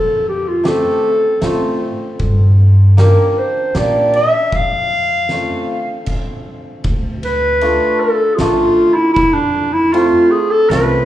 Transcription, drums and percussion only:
0.65 snare, ride
1.42 snare, ride
2.19 kick, ride
2.98 snare, ride
3.75 snare, ride
4.13 ride
4.52 kick, ride
5.29 snare, ride
6.06 kick, crash
6.84 kick, ride
7.23 ride
7.61 ride
8.38 snare, ride
9.16 kick, ride
9.94 ride
10.71 snare, ride

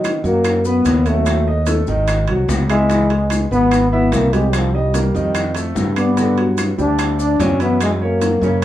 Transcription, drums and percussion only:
0.04 high bongo, high conga, high timbale, claves, maracas
0.25 high conga, maracas
0.44 high bongo, high conga, high timbale, claves, maracas
0.65 high conga, maracas
0.85 high bongo, low bongo, high conga, high timbale, maracas
1.06 high conga, high timbale, maracas
1.26 high bongo, high conga, high timbale, claves, maracas
1.47 high bongo, high conga
1.66 high bongo, high conga, high timbale, maracas
1.87 high conga, maracas
2.08 high bongo, high conga, high timbale, claves, maracas
2.28 high bongo, high conga, high timbale
2.48 high bongo, low bongo, high conga, low timbale, maracas
2.69 high bongo, high conga, high timbale, claves, maracas
2.90 high bongo, high timbale, maracas
3.10 high conga, high timbale
3.30 high bongo, high conga, high timbale, claves, maracas
3.52 maracas
3.71 high bongo, high timbale, claves, maracas
3.92 high conga
4.12 high bongo, low bongo, high conga, high timbale, low timbale, maracas
4.33 high conga, high timbale, maracas
4.53 high bongo, high conga, high timbale, claves, maracas
4.74 high bongo, high conga
4.94 high bongo, high conga, high timbale, maracas
5.15 high conga, maracas
5.35 high bongo, high conga, high timbale, claves, maracas
5.55 high bongo, high conga, high timbale, maracas
5.76 high bongo, low bongo, high conga, maracas
5.96 high bongo, high conga, high timbale, claves, maracas
6.17 high bongo, high conga, high timbale, maracas
6.38 high timbale
6.58 high bongo, high conga, high timbale, claves, maracas
6.79 maracas
6.99 high bongo, high timbale, claves, maracas
7.19 high conga, maracas
7.40 high bongo, low bongo, high conga, high timbale, low timbale, maracas
7.60 high conga, high timbale, maracas
7.81 high bongo, high conga, high timbale, claves, maracas
8.02 high bongo, high conga
8.21 high bongo, high conga, high timbale, maracas
8.43 maracas

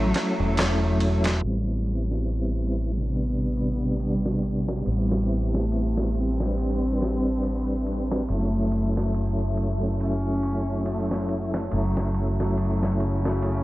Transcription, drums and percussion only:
0.14 snare, ride
0.57 snare, ride
1.00 ride
1.24 snare, ride
1.43 ride
1.86 ride
2.11 snare
2.29 ride
2.71 ride
3.15 open hi-hat
3.57 ride
4.00 ride
4.25 snare
4.43 ride
4.68 snare
4.86 ride
5.11 snare
5.29 ride
5.54 snare
5.72 ride
5.97 snare
6.15 ride
6.40 snare
6.58 ride
7.01 snare, ride
7.43 ride
7.68 ride
7.87 ride
8.12 snare
8.29 ride
8.72 ride
8.97 snare
9.14 ride
9.57 ride
10.00 open hi-hat
10.43 ride
10.86 ride
11.11 snare
11.29 ride
11.54 snare
11.72 ride
11.97 snare
12.14 ride
12.40 snare
12.57 ride
12.83 snare
13.00 ride
13.25 snare
13.43 ride

